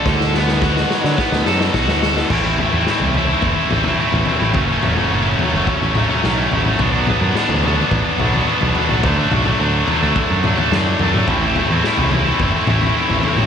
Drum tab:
CC |----------------|x---------------|----------------|----------------|
SD |oooooooooooooooo|----o-----------|------------o---|----o-----------|
T2 |----------------|--o-------o----o|--oo------o----o|--o-------o----o|
FT |----------------|o-o--oo-o-oo-oo-|o-o---o-o-oo--o-|o-o--oo-o-oo-oo-|
BD |o---o---o---o---|o-------o-------|o-------o-------|o-------o-------|

CC |----------------|----------------|
SD |------------o---|----o-----------|
T2 |--oo------o----o|--o-------o----o|
FT |o-o---o-o-oo--o-|o-o--oo-o-oo-oo-|
BD |o-------o-------|o-------o-------|